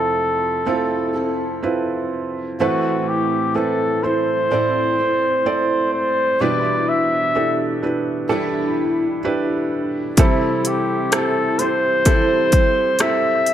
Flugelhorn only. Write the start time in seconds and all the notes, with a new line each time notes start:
Already playing: A4
2.60 F#4
3.08 G4
3.56 A4
4.03 C5
5.93 C5
6.41 D5
6.89 E5
10.21 E4
10.67 G4
11.14 A4
11.59 C5
13.00 E5